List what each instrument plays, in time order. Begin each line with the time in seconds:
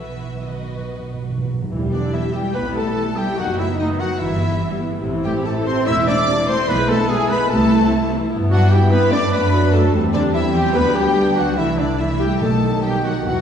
Already playing: double bass section B1, cello section E3, violin section F#4 B4 E5, viola section B4
0.05 timpani B2
0.13 timpani B2
0.21 timpani B2
0.29 timpani B2
0.36 timpani B2
0.42 timpani B2, cello section D#3, violin section F#4 B4 D#5
0.53 timpani B2
0.61 timpani B2
0.68 timpani B2
0.76 timpani B2
0.83 timpani B2
0.91 timpani B2
0.99 timpani B2
1.07 timpani B2
1.14 timpani B2
1.22 timpani B2
1.30 timpani B2
1.37 timpani B2
1.45 timpani B2
1.54 timpani B2
1.62 timpani B2
1.71 double bass section E1, timpani E2, viola section E3 G4, french horn section G3 E4
1.82 viola section G3
1.92 cello section D3, viola section B3, violin section D4 D5, clarinet D4, trumpet D4, flute section D5
2.03 viola section E4
2.13 cello section E3, french horn section G3 E4, viola section B3, clarinet E4, violin section E4 E5, trumpet E4, flute section E5
2.24 viola section G3
2.33 viola section E3, cello section G3, violin section G4 G5, clarinet G4, trumpet G4, flute section G5
2.44 viola section G3
2.53 double bass section B1, french horn section G3 E4, cello section B3, viola section B3, violin section B4 B5, clarinet B4, trumpet B4, flute section B5
2.66 viola section E4
2.75 cello section A3, viola section B3, violin section A4 A5, clarinet A4, trumpet A4, flute section A5
2.87 viola section G3
2.96 viola section E3
3.06 viola section G3
3.17 cello section G3, viola section B3, clarinet G4, violin section G4 G5, trumpet G4, flute section G5
3.27 viola section E4
3.37 double bass section F#1, viola section D#3 D#4, cello section F#3, french horn section B3 D#4, trumpet F#4, violin section F#4 F#5, clarinet F#4, flute section F#5
3.48 viola section F#3
3.58 cello section E3, viola section A3, trumpet E4, violin section E4 E5, clarinet E4, flute section E5
3.69 viola section B3
3.79 cello section D#3, viola section A3, french horn section B3 D#4, trumpet D#4, violin section D#4 D#5, clarinet D#4, flute section D#5
3.89 viola section F#3
4.00 viola section D#3, cello section F#3, trumpet F#4, violin section F#4 F#5, clarinet F#4, flute section F#5
4.11 viola section F#3
4.20 double bass section G1, viola section E3 E4, cello section E3, french horn section B3 E4, trumpet E4, violin section E4 E5, clarinet E4, flute section E5
4.31 viola section G3
4.41 viola section B3
4.51 viola section G3
4.62 viola section E3
4.73 viola section G3
4.83 viola section B3
4.93 viola section G3
5.03 double bass section A1, viola section C3, french horn section C4 E4
5.14 viola section E3
5.24 cello section G3, viola section A3, violin section G4 G5, trumpet G4, clarinet G4, flute section G5
5.36 viola section C4
5.44 viola section A3, cello section A3, french horn section C4 E4, violin section A4 A5, clarinet A4, trumpet A4, flute section A5
5.56 viola section E3
5.65 viola section C3, cello section C4, violin section C5 C6, clarinet C5, trumpet C5, flute section C6
5.77 viola section E3
5.86 double bass section E1, viola section A3, french horn section C4 E4, cello section E4, violin section E5 E6, trumpet E5, clarinet E5, flute section E6
5.96 viola section C4
6.07 viola section A3, cello section D4, trumpet D5, violin section D5 D6, clarinet D5, flute section D6
6.17 viola section E3
6.28 viola section C3, french horn section A3
6.37 viola section E3
6.47 viola section A3, cello section C4, trumpet C5, violin section C5 C6, clarinet C5, flute section C6
6.58 viola section C4
6.68 double bass section B1, viola section E3, french horn section G#3 E4, cello section B3, trumpet B4, violin section B4 B5, clarinet B4, flute section B5
6.79 viola section G#3
6.88 cello section A3, viola section B3, violin section A4 A5, trumpet A4, clarinet A4, flute section A5
6.98 viola section D4
7.08 cello section G#3, french horn section G#3 E4, viola section B3, violin section G#4 G#5, trumpet G#4, clarinet G#4, flute section G#5
7.18 viola section G#3
7.29 viola section E3, cello section B3, violin section B4 B5, trumpet B4, clarinet B4, flute section B5
7.40 viola section G#3
7.50 double bass section C2, viola section C3 E4, cello section A3, french horn section A3 E4, violin section A4 A5, clarinet A4, trumpet A4, flute section A5
7.60 viola section E3
7.70 viola section A3
7.81 viola section C4
7.91 viola section A3
8.00 viola section E3
8.10 viola section C3
8.20 viola section E3
8.30 double bass section G2, viola section B3 E4, french horn section B3 E4
8.51 cello section F#3, viola section D4, trumpet F#4, clarinet F#4, violin section F#4 F#5, flute section F#5
8.71 cello section G3, french horn section B3 E4, viola section B3 E4, clarinet G4, trumpet G4, violin section G4 G5, flute section G5
8.91 cello section B3, clarinet B4, trumpet B4, violin section B4 B5, flute section B5
9.11 double bass section F#2, viola section A3 D4, french horn section A3 D4, cello section D4, trumpet D5, violin section D5 D6, clarinet D5, flute section D6
9.32 cello section B3, trumpet B4, violin section B4 B5, clarinet B4, flute section B5
9.52 viola section F#3 D4
9.72 viola section F#3, cello section A3, violin section A4 A5, trumpet A4, clarinet A4, flute section A5
9.94 double bass section E2, french horn section G3 C4, viola section G3 C4
10.13 cello section D3, viola section G3, violin section D4 D5, clarinet D4, trumpet D4, flute section D5
10.34 cello section E3, french horn section G3 C4, viola section C4, violin section E4 E5, clarinet E4, trumpet E4, flute section E5
10.54 cello section G3, violin section G4 G5, clarinet G4, trumpet G4, flute section G5
10.75 double bass section D2, viola section F#3 B3, cello section B3, french horn section B3 D4, clarinet B4, violin section B4 B5, trumpet B4, flute section B5
10.95 cello section G3, violin section G4 G5, clarinet G4, trumpet G4, flute section G5
11.17 viola section B3 D4
11.36 cello section F#3, violin section F#4 F#5, clarinet F#4, trumpet F#4, flute section F#5
11.56 double bass section C2, cello section E3, viola section E3 A3, french horn section A3 E4, violin section E4 E5, trumpet E4, clarinet E4, flute section E5
11.78 cello section D3, violin section D4 D5, trumpet D4, clarinet D4, flute section D5
11.98 viola section E3 A3, cello section E3, french horn section A3 E4, violin section E4 E5, clarinet E4, trumpet E4, flute section E5
12.19 cello section G3, clarinet G4, trumpet G4, violin section G4 G5, flute section G5
12.40 double bass section B1, timpani B2, viola section D#3 B3, french horn section F#3 D#4, cello section A3, trumpet A4, violin section A4 A5, clarinet A4, flute section A5
12.82 cello section G3, trumpet G4, violin section G4 G5, clarinet G4, flute section G5
13.04 cello section F#3, violin section F#4 F#5, trumpet F#4, clarinet F#4, flute section F#5
13.25 timpani E2, double bass section E2, viola section E3 B3, cello section F#3, french horn section G3 E4, trumpet F#4, violin section F#4 F#5, clarinet F#4, flute section F#5